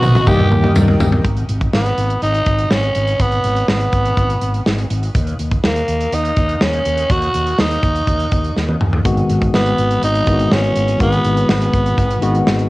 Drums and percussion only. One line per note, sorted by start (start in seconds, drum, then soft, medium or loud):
0.03 mid tom medium
0.03 tambourine medium
0.15 mid tom medium
0.15 tambourine soft
0.27 kick medium
0.27 mid tom medium
0.27 tambourine soft
0.39 mid tom medium
0.51 mid tom loud
0.51 tambourine soft
0.64 mid tom medium
0.75 floor tom loud
0.75 tambourine medium
0.88 floor tom medium
1.00 floor tom loud
1.00 tambourine medium
1.12 floor tom medium
1.25 kick loud
1.25 closed hi-hat medium
1.37 closed hi-hat soft
1.49 closed hi-hat medium
1.61 kick medium
1.61 closed hi-hat soft
1.73 snare loud
1.86 closed hi-hat soft
1.98 closed hi-hat medium
2.10 closed hi-hat soft
2.22 closed hi-hat medium
2.35 closed hi-hat soft
2.46 kick medium
2.46 closed hi-hat medium
2.59 closed hi-hat soft
2.71 snare loud
2.83 closed hi-hat soft
2.95 closed hi-hat medium
3.07 closed hi-hat soft
3.20 kick medium
3.20 closed hi-hat medium
3.32 closed hi-hat soft
3.44 closed hi-hat medium
3.56 closed hi-hat soft
3.68 snare loud
3.80 closed hi-hat medium
3.93 kick medium
3.93 closed hi-hat medium
4.05 closed hi-hat soft
4.17 kick medium
4.17 closed hi-hat medium
4.30 closed hi-hat soft
4.41 closed hi-hat medium
4.54 closed hi-hat soft
4.66 snare loud
4.78 closed hi-hat soft
4.90 closed hi-hat medium
5.03 closed hi-hat soft
5.15 kick loud
5.15 closed hi-hat medium
5.27 closed hi-hat soft
5.39 closed hi-hat medium
5.51 kick medium
5.51 closed hi-hat soft
5.64 snare loud
5.76 closed hi-hat medium
5.88 closed hi-hat medium
6.01 closed hi-hat soft
6.12 closed hi-hat medium
6.25 closed hi-hat soft
6.37 kick medium
6.37 closed hi-hat medium
6.49 closed hi-hat soft
6.61 snare loud
6.73 closed hi-hat soft
6.85 closed hi-hat medium
6.98 closed hi-hat medium
7.10 kick loud
7.10 closed hi-hat medium
7.22 closed hi-hat soft
7.34 closed hi-hat medium
7.47 closed hi-hat soft
7.59 snare loud
7.71 closed hi-hat soft
7.83 kick medium
7.83 closed hi-hat medium
7.96 closed hi-hat soft
8.07 kick medium
8.07 closed hi-hat medium
8.20 closed hi-hat soft
8.32 kick medium
8.32 closed hi-hat medium
8.44 closed hi-hat soft
8.56 snare medium
8.69 high tom medium
8.81 mid tom medium
8.93 floor tom medium
9.05 kick loud
9.05 closed hi-hat medium
9.17 closed hi-hat soft
9.30 closed hi-hat medium
9.42 kick medium
9.42 closed hi-hat soft
9.54 snare loud
9.66 closed hi-hat soft
9.78 closed hi-hat medium
9.91 closed hi-hat soft
10.03 closed hi-hat medium
10.15 closed hi-hat soft
10.27 kick medium
10.27 closed hi-hat medium
10.39 closed hi-hat soft
10.52 snare loud
10.64 closed hi-hat soft
10.76 closed hi-hat medium
10.88 closed hi-hat soft
11.00 kick loud
11.00 closed hi-hat medium
11.12 closed hi-hat soft
11.24 closed hi-hat medium
11.37 closed hi-hat soft
11.49 snare loud
11.61 closed hi-hat medium
11.73 kick medium
11.73 closed hi-hat medium
11.86 closed hi-hat soft
11.98 kick medium
11.98 closed hi-hat medium
12.10 closed hi-hat soft
12.22 closed hi-hat medium
12.34 closed hi-hat soft
12.47 snare loud
12.59 closed hi-hat soft